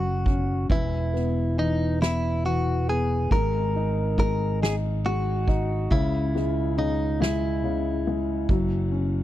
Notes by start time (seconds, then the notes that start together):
Already playing: F#1 F#3 C#4 F#4
0.26 C#4, kick, ride
0.70 E1 E3 E4, kick, ride
1.13 B3, snare, ride
1.56 E3 D#4, ride
2.01 B3 E4, snare
2.44 E3 F#4, ride
2.88 B3 G#4, ride
3.31 G#1 G#3 A#4, kick, ride
3.74 D#4, ride
4.17 G#3 A#4, kick, ride
4.61 D#4 G#4, snare, ride
5.05 G#3 F#4, ride
5.48 D#4, kick, ride
5.91 C#2 C#3 E4, kick, ride
6.34 G#3, snare, ride
6.76 C#3 D#4, ride
7.20 G#3 E4, snare, ride
7.63 C#3, ride
8.07 G#3, ride
8.49 F#1 F#3, kick, ride
8.92 C#4, ride